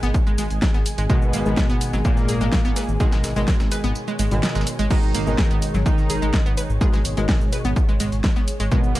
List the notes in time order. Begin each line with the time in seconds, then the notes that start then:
Already playing: B2 D#3 G#3 G#4 G#5
0.03 G#1 B3, closed hi-hat, shaker
0.14 kick, tambourine, shaker
0.27 G#3, shaker
0.38 G#1 G#3, snare, open hi-hat, tambourine, shaker
0.50 G#1, closed hi-hat, shaker
0.62 G#3, kick, snare, tambourine, shaker
0.74 G#1 B3, snare, shaker
0.86 open hi-hat, tambourine, shaker
0.98 G#1 G#3, open hi-hat, shaker
1.10 B2 D#3 G#3 B3, kick, tambourine, shaker
1.22 shaker
1.33 G#1 A#3, open hi-hat, tambourine, shaker
1.46 G#1 D#3 G#3, shaker
1.57 G#3, kick, snare, tambourine, shaker
1.70 G#1 B3, shaker
1.81 open hi-hat, tambourine, shaker
1.93 G#1 F#3, snare, shaker
2.05 A#2 G#3 A#3, kick, tambourine, shaker
2.17 snare, shaker
2.29 G#1 G#4, open hi-hat, tambourine, shaker
2.41 G#1 G#3, shaker
2.52 G#3, kick, snare, tambourine, shaker
2.65 G#1 B3, shaker
2.76 B4, snare, open hi-hat, tambourine, shaker
2.88 G#1, shaker
3.00 B2 D#3 G#3 G#4, kick, tambourine, shaker
3.12 G#3, snare, tambourine, shaker
3.24 G#1, snare, open hi-hat, tambourine, shaker
3.36 G#1 B2 D#3 G#3, snare, shaker
3.48 G#3, kick, snare, tambourine, shaker
3.60 G#1, snare, tambourine, shaker
3.72 B4, snare, open hi-hat, shaker
3.84 G#1 B3, tambourine, shaker
3.95 C#5, tambourine, shaker
4.08 G#3, shaker
4.19 G#1 G#3, snare, open hi-hat, tambourine, shaker
4.31 G#1 B2 D#3 G#3, closed hi-hat, shaker
4.43 G#3, snare, tambourine, shaker
4.49 snare, tambourine
4.55 G#1 G#3, snare, tambourine, shaker
4.61 snare, tambourine
4.67 open hi-hat, tambourine, shaker
4.79 G#1 G#3, open hi-hat, shaker
4.91 B2 D#3 G#3 D#4, kick, tambourine, crash, shaker
5.03 shaker
5.14 G#1 A#3, open hi-hat, tambourine, shaker
5.27 G#1 B2 D#3 G#3, shaker
5.38 G#3, kick, snare, tambourine, shaker
5.51 G#1 B3, shaker
5.62 open hi-hat, tambourine, shaker
5.74 G#1 F#3, snare, shaker
5.86 D#3 G#3 D#4, kick, tambourine, shaker
5.98 snare, shaker
6.10 G#1 G#4, open hi-hat, tambourine, shaker
6.22 G#1 G#3, shaker
6.33 G#3, kick, snare, tambourine, shaker
6.46 G#1 B3, shaker
6.57 B4, open hi-hat, tambourine, shaker
6.69 G#1, shaker
6.81 B2 D#3 G#3 G#4, kick, tambourine, shaker
6.93 G#3, snare, shaker
7.05 G#1, open hi-hat, tambourine, shaker
7.17 G#1 B2 D#3 G#3, closed hi-hat, shaker
7.29 G#3, kick, snare, open hi-hat, shaker
7.41 G#1, shaker
7.53 B4, open hi-hat, tambourine, shaker
7.65 G#1 B3, closed hi-hat, shaker
7.76 kick, tambourine, shaker
7.89 G#3, shaker
8.00 G#1 G#3, snare, open hi-hat, tambourine, shaker
8.12 G#1, closed hi-hat, shaker
8.24 G#3, kick, snare, tambourine, shaker
8.36 G#1 B3, snare, shaker
8.48 open hi-hat, tambourine, shaker
8.60 G#1 G#3, open hi-hat, shaker
8.72 B2 D#3 G#3 B3, kick, tambourine, shaker
8.84 shaker
8.95 G#1 A#3, open hi-hat, tambourine, shaker